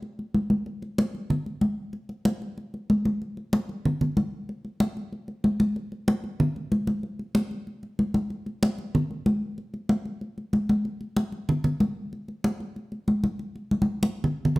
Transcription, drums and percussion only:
0.02 high conga
0.19 high conga
0.34 high conga
0.50 high conga
0.66 high conga
0.82 high conga
0.98 high conga
1.15 high conga
1.30 high conga, low conga
1.46 high conga
1.61 high conga
1.93 high conga
2.09 high conga
2.25 high conga
2.42 high conga
2.58 high conga
2.74 high conga
2.90 high conga
3.05 high conga
3.22 high conga
3.37 high conga
3.53 high conga
3.69 high conga
3.85 high conga, low conga
4.01 high conga, low conga
4.17 high conga
4.49 high conga
4.65 high conga
4.80 high conga
4.97 high conga
5.12 high conga
5.28 high conga
5.44 high conga
5.60 high conga
5.76 high conga
5.92 high conga
6.08 high conga
6.24 high conga
6.40 high conga, low conga
6.56 high conga
6.72 high conga
6.87 high conga
7.03 high conga
7.19 high conga
7.35 high conga
7.51 high conga
7.67 high conga
7.83 high conga
7.99 high conga
8.14 high conga
8.30 high conga
8.46 high conga
8.63 high conga
8.78 high conga
8.95 high conga, low conga
9.11 high conga
9.26 high conga
9.58 high conga
9.74 high conga
9.89 high conga
10.05 high conga
10.21 high conga
10.38 high conga
10.53 high conga
10.69 high conga
10.85 high conga
11.01 high conga
11.17 high conga
11.32 high conga
11.49 high conga, low conga
11.64 high conga, low conga
11.80 high conga
12.13 high conga
12.28 high conga
12.44 high conga
12.60 high conga
12.76 high conga
12.92 high conga
13.08 high conga
13.24 high conga
13.39 high conga
13.56 high conga
13.71 high conga
13.82 high conga
14.03 high conga
14.24 low conga
14.45 low conga
14.56 low conga

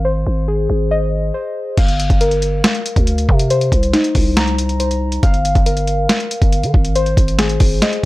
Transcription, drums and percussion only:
1.77 kick, closed hi-hat, crash
1.88 closed hi-hat
2.00 closed hi-hat
2.10 kick, closed hi-hat
2.21 closed hi-hat
2.31 closed hi-hat
2.42 closed hi-hat
2.64 snare, closed hi-hat
2.75 closed hi-hat
2.86 closed hi-hat
2.96 kick, closed hi-hat
3.07 closed hi-hat
3.18 closed hi-hat
3.29 kick
3.39 closed hi-hat
3.50 closed hi-hat
3.61 closed hi-hat
3.72 kick, closed hi-hat
3.83 closed hi-hat
3.93 snare, closed hi-hat
4.04 closed hi-hat
4.15 kick, open hi-hat
4.37 snare, closed hi-hat
4.47 closed hi-hat
4.58 closed hi-hat
4.69 closed hi-hat
4.80 closed hi-hat
4.91 closed hi-hat
5.12 closed hi-hat
5.23 kick, closed hi-hat
5.34 closed hi-hat
5.45 closed hi-hat
5.55 kick, closed hi-hat
5.66 closed hi-hat
5.77 closed hi-hat
5.87 closed hi-hat
6.09 snare, closed hi-hat
6.20 closed hi-hat
6.31 closed hi-hat
6.42 kick, closed hi-hat
6.53 closed hi-hat
6.63 closed hi-hat
6.74 kick
6.85 closed hi-hat
6.96 closed hi-hat
7.06 closed hi-hat
7.17 kick, closed hi-hat
7.28 closed hi-hat
7.39 snare, closed hi-hat
7.49 closed hi-hat
7.60 kick, open hi-hat
7.82 snare, closed hi-hat
7.93 closed hi-hat

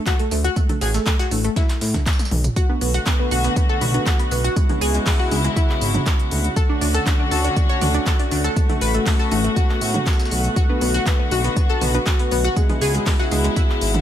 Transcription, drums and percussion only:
0.06 kick, snare, clap, closed hi-hat, tambourine
0.19 closed hi-hat
0.31 open hi-hat, tambourine
0.44 closed hi-hat
0.56 kick, closed hi-hat, tambourine
0.69 closed hi-hat, mid tom, high conga
0.81 snare, open hi-hat, tambourine
0.94 snare, closed hi-hat, tambourine
1.06 kick, snare, clap, closed hi-hat, tambourine
1.19 snare, closed hi-hat, tambourine
1.31 open hi-hat, tambourine, high conga
1.44 closed hi-hat
1.56 kick, snare, closed hi-hat, tambourine
1.69 snare, clap, closed hi-hat, tambourine
1.81 snare, open hi-hat, tambourine
1.94 kick, snare, closed hi-hat, mid tom, tambourine, high conga
2.06 kick, snare, clap, closed hi-hat, tambourine
2.13 snare, tambourine
2.19 snare, closed hi-hat, high tom, tambourine
2.25 snare, tambourine
2.31 open hi-hat, mid tom
2.44 closed hi-hat, mid tom, tambourine
2.56 kick, closed hi-hat, tambourine
2.69 high conga
2.81 open hi-hat, tambourine
2.94 closed hi-hat
3.06 kick, snare, clap, closed hi-hat, tambourine
3.31 open hi-hat, tambourine, high conga
3.44 closed hi-hat
3.56 kick, closed hi-hat, tambourine
3.81 open hi-hat, mid tom, tambourine
3.94 closed hi-hat, high conga
4.06 kick, snare, clap, closed hi-hat, tambourine
4.19 closed hi-hat
4.31 open hi-hat, tambourine
4.44 closed hi-hat
4.56 kick, closed hi-hat, tambourine
4.69 closed hi-hat, mid tom, high conga
4.81 open hi-hat, tambourine
4.95 closed hi-hat
5.06 kick, snare, clap, closed hi-hat, open hi-hat
5.31 open hi-hat, tambourine, high conga
5.44 closed hi-hat
5.56 kick, closed hi-hat, tambourine
5.70 clap
5.81 open hi-hat, tambourine
5.94 closed hi-hat, mid tom, high conga
6.06 kick, snare, clap, closed hi-hat, tambourine
6.19 closed hi-hat
6.31 snare, open hi-hat, tambourine
6.44 closed hi-hat
6.56 kick, closed hi-hat, tambourine
6.70 high conga
6.81 open hi-hat, tambourine
6.94 closed hi-hat
7.06 kick, snare, clap, closed hi-hat, tambourine
7.31 open hi-hat, tambourine, high conga
7.44 closed hi-hat
7.56 kick, closed hi-hat, tambourine
7.81 open hi-hat, mid tom, tambourine
7.94 closed hi-hat, high conga
8.06 kick, snare, clap, closed hi-hat, tambourine
8.19 closed hi-hat
8.31 open hi-hat, tambourine
8.44 closed hi-hat
8.56 kick, closed hi-hat, tambourine
8.69 closed hi-hat, mid tom, high conga
8.81 open hi-hat, tambourine
8.94 closed hi-hat
9.06 kick, snare, clap, closed hi-hat, open hi-hat
9.31 open hi-hat, tambourine, high conga
9.44 closed hi-hat
9.56 kick, closed hi-hat, tambourine
9.70 clap
9.81 open hi-hat, tambourine
9.94 closed hi-hat, mid tom, high conga
10.06 kick, snare, clap, closed hi-hat, tambourine
10.13 snare, tambourine
10.19 snare, closed hi-hat, tambourine
10.25 snare, tambourine
10.31 snare, open hi-hat, tambourine
10.44 closed hi-hat
10.56 kick, closed hi-hat, tambourine
10.69 high conga
10.81 open hi-hat, tambourine
10.94 closed hi-hat
11.06 kick, snare, clap, closed hi-hat, tambourine
11.31 open hi-hat, tambourine, high conga
11.44 closed hi-hat
11.56 kick, closed hi-hat, tambourine
11.81 open hi-hat, mid tom, tambourine
11.94 closed hi-hat, high conga
12.06 kick, snare, clap, closed hi-hat, tambourine
12.19 closed hi-hat
12.31 open hi-hat, tambourine
12.44 closed hi-hat
12.56 kick, closed hi-hat, tambourine
12.69 closed hi-hat, mid tom, high conga
12.81 open hi-hat, tambourine
12.94 closed hi-hat
13.06 kick, snare, clap, closed hi-hat, open hi-hat
13.31 open hi-hat, tambourine, high conga
13.44 closed hi-hat
13.56 kick, closed hi-hat, tambourine
13.70 clap
13.81 open hi-hat, tambourine
13.94 closed hi-hat, mid tom, high conga

